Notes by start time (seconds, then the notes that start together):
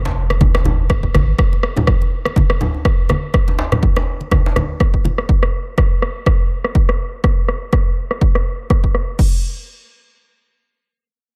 Already playing: F1
0.05 djembe slap, muted conga
0.30 cross-stick, muted conga
0.41 kick, high conga, djembe tone
0.55 cross-stick, djembe slap
0.65 muted conga, high conga, djembe tone, low conga
0.90 G1, kick, cross-stick, muted conga
1.03 kick
1.14 G#1, cross-stick, muted conga, high conga, low conga
1.39 kick, cross-stick
1.53 muted conga
1.63 cross-stick
1.76 muted conga, djembe tone, low conga
1.87 kick, cross-stick, low conga
2.02 muted conga
2.25 cross-stick, muted conga
2.36 kick, high conga
2.50 cross-stick
2.61 muted conga, djembe tone, low conga
2.74 djembe tone
2.85 kick, cross-stick, muted conga
3.09 cross-stick, muted conga, high conga
3.34 kick, cross-stick
3.48 muted conga, djembe slap
3.59 djembe slap
3.72 cross-stick, muted conga, djembe tone, low conga
3.83 kick, low conga
3.96 cross-stick, muted conga, djembe slap
4.21 muted conga
4.31 kick, cross-stick, high conga, djembe tone
4.46 djembe slap
4.56 cross-stick, muted conga, djembe tone, high conga, low conga
4.80 kick, cross-stick, muted conga
4.94 kick
5.04 muted conga, high conga, low conga
5.18 cross-stick
5.29 kick
5.43 cross-stick
5.78 kick, cross-stick
6.02 cross-stick
6.26 kick, cross-stick
6.64 cross-stick
6.75 kick
6.89 cross-stick
7.24 kick, cross-stick
7.48 cross-stick
7.73 kick, cross-stick
8.11 cross-stick
8.21 kick
8.35 cross-stick
8.70 kick, cross-stick
8.84 kick
8.95 cross-stick
9.19 kick, crash